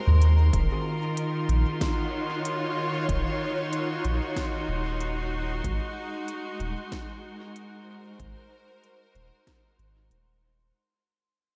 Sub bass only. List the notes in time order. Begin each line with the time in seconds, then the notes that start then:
0.07 D#2
0.53 D#1
1.49 A#1
3.09 D#1
4.05 A#1
4.68 D#1
5.64 G#1
6.60 D#1
8.19 G#1
9.15 D#1
9.79 G#1
10.11 D#1